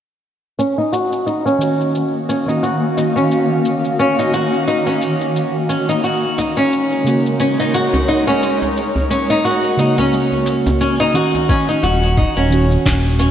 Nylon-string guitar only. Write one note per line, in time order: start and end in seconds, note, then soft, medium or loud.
0.59 0.77 C#4 medium
0.78 0.92 D#4 medium
0.92 1.25 F#4 medium
1.26 1.44 D#4 medium
1.46 2.12 C#4 medium
2.29 2.47 C#4 medium
2.48 2.62 D#4 medium
2.63 2.96 F#4 medium
2.97 3.15 D#4 medium
3.16 3.82 C#4 medium
3.99 4.18 C#4 medium
4.19 4.33 D#4 medium
4.34 4.66 F#4 medium
4.67 4.85 D#4 medium
4.86 5.53 C#4 medium
5.69 5.88 C#4 medium
5.89 6.03 D#4 medium
6.04 6.37 F#4 medium
6.38 6.56 D#4 medium
6.57 7.23 C#4 medium
7.40 7.58 C#4 medium
7.60 7.74 D#4 loud
7.74 8.07 F#4 medium
8.08 8.26 D#4 medium
8.27 8.94 C#4 medium
9.10 9.29 C#4 medium
9.30 9.44 D#4 medium
9.45 9.77 F#4 medium
9.79 9.96 D#4 medium
9.98 10.64 C#4 medium
10.81 10.99 C#4 medium
11.00 11.14 D#4 medium
11.15 11.48 F#4 medium
11.49 11.68 C#4 medium
11.69 11.83 D#4 medium
11.83 12.16 F#4 medium
12.17 12.35 D#4 medium
12.37 13.03 C#4 medium
13.19 13.31 C#4 medium